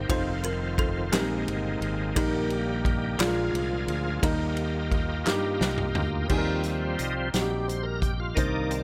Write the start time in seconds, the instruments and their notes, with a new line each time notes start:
Already playing: grand piano C3 A#3 D#4 G4 C5, tonewheel organ D#3 C4
0.09 fingered electric bass F1, tonewheel organ F3 F4, grand piano G3 D#4 F4 C5, kalimba D#4 A4 C5, kick, ride
0.15 grand piano C4
0.43 kalimba A#4, ride
0.78 kalimba A4, kick, ride
1.12 fingered electric bass A#1, grand piano A#2 G#3 C4 D#4 A#4, tonewheel organ D#3 G#3 A#3, kalimba C4 D#4 G4, snare, clap, ride
1.47 fingered electric bass G1, ride
1.81 fingered electric bass G#1, ride
2.15 fingered electric bass A#1, grand piano A#2 G3 A#3 D#4 A#4, tonewheel organ G3 G4, kalimba D#4 G4 A#4, kick, ride
2.50 ride
2.85 kick, ride
3.18 fingered electric bass A#1, grand piano A#2 G#3 D4 F4 G#4, tonewheel organ F3 F4 G#4, kalimba F4 G#4 D5, snare, clap, ride
3.27 grand piano A#4
3.53 fingered electric bass C2, ride
3.88 fingered electric bass D2, ride
4.21 fingered electric bass D#2, grand piano D#3 G3 A#3 D#4 A#4, tonewheel organ A#3 D#4 G4, kalimba G4 A#4 D#5, kick, ride
4.57 ride
4.92 kick, ride
5.26 fingered electric bass G2, grand piano G3 A#3 D#4 G4, snare, clap
5.61 fingered electric bass C2, snare
5.78 mid tom
5.95 fingered electric bass D2, floor tom
6.28 fingered electric bass D#2, grand piano D#3 G3 C4 D#4 G#4, tonewheel organ F3 G3 C4, kick, crash
6.38 grand piano A#4
6.63 closed hi-hat
6.98 fingered electric bass C2, tonewheel organ D#4, closed hi-hat
7.34 fingered electric bass A#1, grand piano G3 C4 D#4 F#4, tonewheel organ G4, snare, closed hi-hat
7.42 grand piano G4
7.50 tonewheel organ G4
7.68 tonewheel organ C5, closed hi-hat
7.83 tonewheel organ A#4
8.02 tonewheel organ G4, kick, closed hi-hat
8.20 tonewheel organ F4
8.34 fingered electric bass C2, grand piano C3 A#3 D4 D#4 C5, tonewheel organ D#3 A#3 D#4 D5, kick, closed hi-hat
8.71 tonewheel organ C4, closed hi-hat